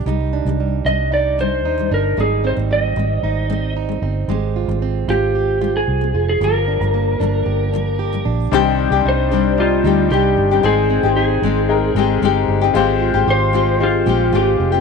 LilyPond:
<<
  \new Staff \with { instrumentName = "Electric slide guitar" } { \time 4/4 \key c \minor \tempo 4 = 113 r4. ees''8 d''8 c''4 bes'8 | aes'8 c''8 ees''2 r4 | r4. g'4~ g'16 aes'4 aes'16 | bes'2.~ bes'8 r8 |
r4 c''4 f'4 g'4 | aes'4 aes'2 r4 | r4 c''4 f'4 g'4 | }
  \new Staff \with { instrumentName = "Upright piano" } { \time 4/4 \key c \minor r1 | r1 | r1 | r1 |
<g d' ees' c''>4. r8 <g d' ees' c''>4. r8 | <aes ees' c'' g''>4. r8 <aes ees' bes' g''>4. r8 | <aes f' g' c''>4. r8 <aes f' g' c''>4. r8 | }
  \new Staff \with { instrumentName = "Steel-string acoustic guitar" } { \time 4/4 \key c \minor <g ees'>8 d'8 g8 d'8 ees'8 d'8 ees'8 d'8 | <g ees'>8 c'8 g8 c'8 ees'8 c'8 ees'8 c'8 | <aes g'>8 f'8 c'8 f'8 g'8 f'4 f'8 | <f g'>8 d'8 bes8 d'8 g'8 d'8 g'8 d'8 |
g8 d'8 ees'8 d'8 g8 ees'8 d'8 g8 | r8 c'8 ees'8 c'4 ees'8 c'8 g8 | aes8 f'8 g'8 f'8 c'8 g'8 f'8 c'8 | }
  \new Staff \with { instrumentName = "Nylon-string guitar" } { \time 4/4 \key c \minor <c ees g>8 r16 <c ees g>8 r16 <c ees g>8 r8 <c ees g>8 r16 <c ees g>8 r16 | <aes c'>8 r16 <aes c'>8 r16 <aes c'>8 r8 <aes c'>8 r16 <aes c'>8 r16 | <aes c'>8 r16 <aes c'>8 r16 <aes c'>8 r8 <aes c'>8 r16 <aes c'>8 r16 | <g, d f>8 r16 <g, d f>8 r16 <g, d f>8 r8 <g, d f>8 r16 <g, d f>8 r16 |
<c ees g c' d' g'>8. <g c' d' g'>8. <g c' d' g'>4 <g c' d' g'>8 <g c' d' g'>8. <g c' d' g'>16 | <aes c' ees'>8. <c' ees' g'>8. <aes c' ees'>4 <aes c' ees' g'>8 <aes c' ees' g'>8. <c' ees' g'>16 | <aes c' f' g'>8. <c' f' g'>8. <aes c' f' g'>4 <aes c' f' g'>8 <aes c' f' g'>8. <c' f' g'>16 | }
  \new Staff \with { instrumentName = "Fingered electric bass" } { \clef bass \time 4/4 \key c \minor c,8. c,8. c,4. ees,8 g,,8 | aes,,8. aes,,8. aes,,8 aes,,4. g,,8 | aes,,8. aes,,8. aes,,4. c,8 f,,8 | g,,8. g,,8. g,,8 g,,4. bes,,8 |
c,8. c,16 c,4. d,8 c,8 g,,8 | aes,,8. aes,,8. aes,,4 aes,,8 g,,8 g,,8 | aes,,8. aes,,16 aes,,4. bes,,8 aes,,8 f,,8 | }
>>